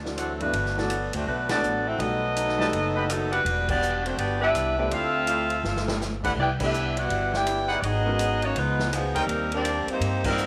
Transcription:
Already playing: upright bass D2
0.03 grand piano E3 A3 D4 F#4, snare
0.16 trombone section C3 F#3 A3, saxophone section F#3 C4 D4 A4, trumpet section F#4 C5 D5 F#5, cross-stick, hi-hat pedal, ride
0.40 grand piano G2 E3 A3 D4 E4, trombone section D3 F#3 B3, saxophone section A3 D4 F#4 B4, ride
0.53 upright bass G1, ride
0.66 snare
0.77 grand piano E3 A3 D4 F#4, trombone section F#3 B3 D4, saxophone section B3 F#4 A4 D5, snare
0.90 hi-hat pedal, ride
1.12 upright bass D2, saxophone section A3 D4 F#4 C5, trombone section C4, ride
1.25 upright bass B1, trombone section D3 F#3 B3, saxophone section A3 D4 F#4 B4
1.49 trombone section F#3 B3 D4, saxophone section B3 F#4 A4 D5, trumpet section G4 B4 F#5 A5, snare, ride
1.62 upright bass A1, hi-hat pedal
1.85 saxophone section C4 F#4 A4 E5, trombone section E4
1.97 upright bass B1, trombone section F#3 A3 D#4, grand piano G3 A3 D#4 F#4, saxophone section B3 F#4 A4 D#5, ride
2.37 hi-hat pedal, ride
2.49 snare
2.58 grand piano G3 A3 D#4 G4, trumpet section G4 B4 D#5 A5, snare
2.72 upright bass F#1, ride
2.95 trumpet section G4 B4 D#5 B5
3.09 trombone section D#3 F#3 A3, saxophone section F#3 B3 D#4 A4, cross-stick, hi-hat pedal, ride
3.31 trombone section D3 G3 B3, saxophone section G3 D4 F#4 B4, trumpet section E4 G4 D5 F#5, ride
3.45 upright bass E1, ride
3.69 trombone section G3 B3 D4, saxophone section B3 F#4 G4 D5, kick, crash
3.82 hi-hat pedal
4.04 saxophone section A3 D4 F#4 C5, trombone section C4, ride
4.17 upright bass G1, trombone section G3 B3 D4, saxophone section B3 F#4 G4 D5, ride
4.40 trombone section G3 B3 E4, saxophone section D4 G4 B4 E5, trumpet section E4 G4 D5 F#5
4.53 upright bass C2, cross-stick, hi-hat pedal, ride
4.77 trombone section G3 B3 E4, grand piano A3 D4 G4 C5, saxophone section D4 G4 B4 E5
4.90 upright bass D2, trombone section A3 C4 F4, saxophone section C4 A4 E5 F5, trumpet section E4 C5 D5 F5, ride
5.27 trumpet section E4 C5 D5 F5, hi-hat pedal, ride
5.50 ride
5.63 upright bass G1, snare
5.76 snare
5.87 grand piano A3 D4 G4 B4, snare
6.01 snare, hi-hat pedal
6.23 grand piano A3 D4 G4 B4, trumpet section E4 B4 D5 F#5, kick, crash
6.36 upright bass C2, trombone section B3 E4 G4
6.40 saxophone section E4 B4 D5 G5
6.60 trombone section G3 B3 E4, grand piano A3 D4 G4 B4, saxophone section D4 G4, kick, crash
6.64 saxophone section B4 E5
6.74 hi-hat pedal
6.97 trombone section G3 B3 F#4, saxophone section E4 B4 D5 F#5, ride
7.09 upright bass G1, ride
7.34 trombone section B3 E4 G4, saxophone section E4 B4 D5 G5, snare
7.47 cross-stick, hi-hat pedal, ride
7.68 trombone section G3 B3 F#4, trumpet section D#4 G#4 B4 F#5, saxophone section E4 B4 D5 F#5
7.80 upright bass G#1, trombone section F#3 B3 D#4, saxophone section D5, ride
7.85 saxophone section B3 F#4 G#4 D#5
8.06 grand piano G#3 C#4 F#4 A#4
8.19 hi-hat pedal, ride
8.42 saxophone section A#3 D#4 F#4 C#5, trombone section C#4, ride
8.55 upright bass C#2, trombone section F3 G#3 B3, saxophone section G#3 D#4 F4 B4, ride
8.79 snare
8.92 trombone section B2 F3 G#3, saxophone section F3 B3 D#4 G#4, cross-stick, hi-hat pedal, ride
9.14 upright bass D2, trombone section C3 G3 A#3, saxophone section G3 C4 D#4 A#4, trumpet section D#4 A#4 C5 G5, ride
9.27 upright bass D#2, ride
9.52 trombone section G3 A#3 D4, saxophone section C4 G4 A#4 D5, ride
9.65 hi-hat pedal, ride
9.87 trombone section C3 G3 C4, muted upright bass stroke, ride
9.91 saxophone section A#3 D#4 G4 C5
10.00 upright bass G2, ride
10.24 trombone section C3 G3 A#3, grand piano G3 C4 F4 A#4, saxophone section G3 C4 D#4 A#4, kick, crash
10.38 hi-hat pedal

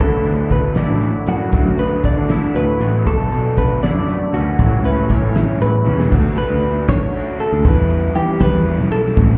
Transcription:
0.00 picked electric bass D2, clean electric guitar D2 D3 F#3 B3 E4 A4, overdriven electric guitar D3 F#3 A3 D4, kick
0.12 picked electric bass D2
0.25 picked electric bass D2, overdriven electric guitar D3 F#3 A3 D4, clean electric guitar B3, closed hi-hat
0.50 overdriven electric guitar D3 F#3 A3 D4, clean electric guitar D3 B4, kick, closed hi-hat
0.75 overdriven electric guitar D3 F#3 A3 D4, clean electric guitar E4 D5, snare, closed hi-hat
0.89 picked electric bass A1
1.01 clean electric guitar A2 F#3, closed hi-hat
1.26 picked electric bass F#2, overdriven electric guitar D3 F#3 A3 D4, clean electric guitar B3 F#4, closed hi-hat
1.52 clean electric guitar D2 F#3, overdriven electric guitar D3 F#3 A3 D4, kick, closed hi-hat
1.66 picked electric bass F#2
1.78 overdriven electric guitar D3 F#3 A3 D4, clean electric guitar B3 B4, closed hi-hat
2.04 clean electric guitar D3 D5, overdriven electric guitar D3 F#3 A3 D4, kick, closed hi-hat
2.17 picked electric bass D3
2.29 overdriven electric guitar D3 F#3 A3 D4, clean electric guitar E4, snare, closed hi-hat
2.55 picked electric bass D2, clean electric guitar A2 F#3 B4, closed hi-hat
2.80 picked electric bass A1, overdriven electric guitar D3 F#3 A3 D4, clean electric guitar B3, closed hi-hat
3.06 picked electric bass B1, overdriven electric guitar B2 F#3 B3 D4, clean electric guitar B2 A3 A4, kick, closed hi-hat
3.19 picked electric bass B1
3.31 picked electric bass B1, overdriven electric guitar B2 F#3 B3 D4, closed hi-hat
3.57 overdriven electric guitar B2 F#3 B3 D4, clean electric guitar D3 B4, kick, closed hi-hat
3.83 overdriven electric guitar B2 F#3 B3 D4, clean electric guitar E4 D5, snare, closed hi-hat
3.95 picked electric bass F#2
4.08 clean electric guitar F#2 A3, closed hi-hat
4.33 picked electric bass D2, overdriven electric guitar B2 F#3 B3 D4, clean electric guitar C#4 F#4, closed hi-hat
4.59 picked electric bass A1, clean electric guitar A2 F#3, overdriven electric guitar E3 G3 C#4 E4, kick, closed hi-hat
4.71 picked electric bass C#2
4.84 overdriven electric guitar E3 G3 C#4 E4, clean electric guitar C#4 B4, closed hi-hat
5.09 overdriven electric guitar E3 G3 C#4 E4, clean electric guitar E3 C#5, kick, closed hi-hat
5.22 picked electric bass A2
5.34 overdriven electric guitar E3 G3 C#4 E4, snare, closed hi-hat
5.61 picked electric bass A1, clean electric guitar E2 F#3 B4, closed hi-hat
5.85 picked electric bass E2, overdriven electric guitar E3 G3 C#4 E4, clean electric guitar C#4, high tom
6.00 snare
6.10 picked electric bass D2, overdriven electric guitar D3 A3 D4, kick, crash
6.14 overdriven electric guitar F#4
6.37 clean electric guitar B4, ride
6.50 picked electric bass D2
6.63 ride
6.88 picked electric bass D3, clean electric guitar C#5, kick, snare, ride
7.12 overdriven electric guitar D3 A3 D4 F#4, ride
7.39 clean electric guitar A4, ride
7.52 picked electric bass D2
7.64 picked electric bass E2, overdriven electric guitar E3 G3 B3 E4, clean electric guitar B4, kick, ride
7.77 picked electric bass E2
7.90 ride
8.15 picked electric bass E3, clean electric guitar G4, ride
8.39 clean electric guitar B4, kick, snare, ride
8.54 picked electric bass E2
8.65 overdriven electric guitar E3 G3 B3 E4, ride
8.79 picked electric bass B1
8.92 clean electric guitar A4, ride
9.17 picked electric bass A1, overdriven electric guitar A2 E3 A3 C4 E4, kick, ride

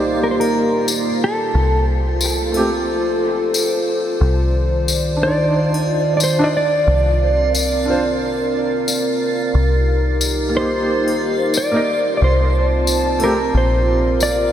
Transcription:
Already playing: fingered electric bass C2, felt piano A#3 D#4 G4, analog synth pad A#3 D#4 G4, synth texture F4, clean electric guitar C5
0.23 clean electric guitar A#4
0.31 clean electric guitar C5
0.40 clean electric guitar A#4, triangle
0.88 tambourine
1.24 clean electric guitar A4
1.54 fingered electric bass C2, analog synth pad F4 A4 C5
2.21 tambourine
2.52 felt piano A3 C4, triangle
2.57 felt piano G4
3.54 tambourine
4.21 fingered electric bass C2, analog synth pad D#3 D5
4.88 tambourine
5.17 felt piano D4
5.22 felt piano D#4, clean electric guitar D5
5.27 felt piano C5
5.74 triangle
6.17 clean electric guitar D5, tambourine
6.23 clean electric guitar C5
6.39 felt piano D4 D#4
6.44 felt piano D5
6.57 clean electric guitar D5
6.87 fingered electric bass C2, analog synth pad C4 A#4
7.55 tambourine
7.85 felt piano D4 F4
7.90 felt piano C5
8.88 tambourine
9.55 fingered electric bass C2, analog synth pad D#4 G4
10.21 tambourine
10.49 felt piano A#3
10.54 felt piano D#4, clean electric guitar C5
10.59 felt piano G4
11.08 triangle
11.54 clean electric guitar D5, tambourine
11.71 felt piano A#3 D#4
11.76 felt piano A#4
12.17 analog synth pad C4 F4 A5, clean electric guitar D5
12.22 fingered electric bass C2, clean electric guitar C5
12.87 tambourine
13.19 felt piano A3 C4, triangle
13.24 felt piano G4, clean electric guitar A#4
13.54 fingered electric bass A#1, analog synth pad F4 A#4, clean electric guitar C5
14.20 clean electric guitar D5, tambourine

